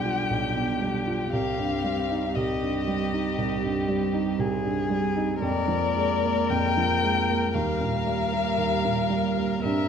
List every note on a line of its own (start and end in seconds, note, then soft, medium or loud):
0.00 0.31 B1 soft
0.00 0.56 B2 soft
0.00 1.28 F3 soft
0.00 0.81 G3 soft
0.00 1.28 D4 soft
0.00 0.05 F4 soft
0.00 1.28 G4 soft
0.00 1.32 G5 medium
0.05 0.45 F4 soft
0.31 1.29 B1 soft
0.56 0.96 B2 soft
0.81 1.22 G3 soft
1.07 1.32 F4 soft
1.32 2.34 C2 medium
1.32 2.33 G3 soft
1.32 2.33 C4 soft
1.32 2.34 G4 soft
1.32 2.37 F5 medium
1.58 2.00 G2 soft
1.84 2.25 G3 soft
2.11 2.51 D#4 soft
2.34 3.36 C2 soft
2.34 5.38 G3 medium
2.34 5.44 C4 soft
2.34 4.41 G4 medium
2.34 4.39 D#5 medium
2.62 3.02 G2 soft
2.88 3.27 G3 soft
3.13 3.53 D#4 soft
3.38 4.37 C2 soft
3.63 4.04 G2 soft
3.88 4.29 G3 soft
4.13 4.54 D#4 soft
4.39 5.39 C2 soft
4.39 5.41 G#4 medium
4.64 5.05 G2 soft
4.90 5.31 G3 soft
5.16 5.42 D#4 soft
5.42 6.49 F2 medium
5.42 7.50 G#3 medium
5.42 7.52 A#3 medium
5.42 7.50 A#4 medium
5.42 6.51 D5 medium
5.68 6.13 F3 soft
5.96 6.40 G#3 soft
6.24 6.67 A#3 soft
6.50 7.51 F2 soft
6.50 7.55 G5 medium
6.77 7.18 F3 soft
7.03 7.44 G#3 soft
7.30 7.55 A#3 soft
7.53 8.56 D#2 medium
7.53 9.60 G3 medium
7.53 9.59 A#3 medium
7.53 9.60 A#4 medium
7.53 9.62 F5 medium
7.81 8.22 A#2 soft
8.07 8.48 G3 soft
8.33 8.75 A#3 soft
8.58 9.60 D#2 soft
8.85 9.27 A#2 soft
9.10 9.53 G3 soft
9.37 9.64 A#3 soft
9.62 9.88 G2 medium
9.62 9.88 G3 medium
9.62 9.88 C4 soft
9.62 9.88 A#4 medium
9.62 9.88 E5 medium